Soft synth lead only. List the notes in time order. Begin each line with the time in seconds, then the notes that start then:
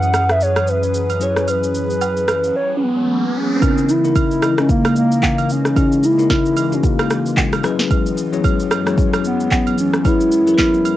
Already playing: F#5
0.31 E5
0.42 C#5
0.69 B4
1.22 C#5
1.49 B4
2.56 C#5
2.77 C#4
2.83 B3
3.37 C#4
3.90 E4
4.17 E4
4.60 C#4
4.71 A#3
4.98 A#3
5.51 C#4
6.05 E4
6.32 E4
6.74 C#4
6.85 A#3
9.26 B3
9.53 B3
9.80 C#4
10.06 E4